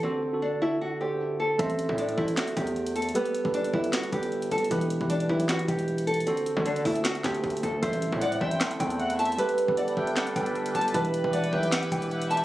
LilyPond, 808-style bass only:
\new Staff \with { instrumentName = "808-style bass" } { \clef bass \time 4/4 \key a \dorian \tempo 4 = 154 r1 | a,,8. a,8. a,,8 r8 e,4. | r8. g,,8. g,,8 r8 g,,4 g,,8 | e,,8. e,,8. b,,8 r8 e,,4. |
r8. d8. d,4 d,8 d,8 d,8 | a,,8. a,8. a,,8 r8 e,4. | r8. g,,8. g,,8 r8 g,,4 g,,8 | e,,8. e,,8. b,,8 r8 e,,4. | }